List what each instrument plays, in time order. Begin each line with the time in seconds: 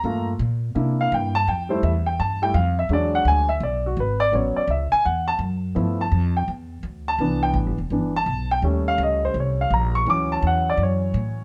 Already playing: grand piano A#5
0.04 upright bass G2, grand piano A3 A#3 F4
0.39 upright bass A#2
0.75 upright bass C3, grand piano A#3 D4 E4
1.01 grand piano F5
1.12 upright bass G2, grand piano G5
1.35 grand piano A5
1.47 upright bass F2, grand piano G5
1.69 grand piano G3 A3 E4 C5
1.83 upright bass E2, grand piano E5
2.06 grand piano G5
2.20 upright bass G2, grand piano A5
2.42 grand piano G3 A3 E4 G5
2.54 upright bass F2, grand piano F5
2.79 grand piano E5
2.89 upright bass E2, grand piano F#3 G#3 D4
2.93 grand piano D5
3.15 grand piano F#5
3.25 upright bass D2, grand piano G#5
3.49 grand piano E5
3.60 upright bass B1, grand piano D5
3.86 grand piano F#4
3.97 upright bass G#1, grand piano B4
4.20 grand piano D5
4.32 upright bass A1, grand piano F#3 B3 C#4 C#5
4.56 grand piano D5, muted upright bass stroke
4.67 upright bass C#2, grand piano E5
4.92 grand piano G#5, muted upright bass stroke
5.05 upright bass E2, grand piano F#5
5.28 grand piano A5
5.39 upright bass F#2
5.75 upright bass G2, grand piano F3 A3 B3 E4
6.01 grand piano A5
6.12 upright bass F2
6.37 grand piano G5
6.48 upright bass E2
6.83 upright bass D2
7.08 grand piano A5
7.19 upright bass C2, grand piano E3 B3 D4
7.43 grand piano G5
7.54 upright bass A1
7.66 upright bass G1
7.78 upright bass E1
7.90 upright bass G1, grand piano E3 B3 D4
8.16 grand piano A5
8.26 upright bass B1
8.51 grand piano G5
8.62 upright bass D#2, grand piano G3 A3 C#4
8.88 grand piano F5
8.98 upright bass C#2
9.03 grand piano D#5
9.25 grand piano C5
9.34 upright bass C2
9.40 grand piano C#5
9.61 grand piano F5
9.71 upright bass A#1, grand piano A#5
9.95 grand piano C#6
10.06 upright bass D2, grand piano E3 F#3 C#4 D6
10.32 grand piano A5
10.43 upright bass E2
10.47 grand piano F#5
10.70 grand piano D5
10.77 upright bass F#2
10.83 grand piano C#5
11.14 upright bass A2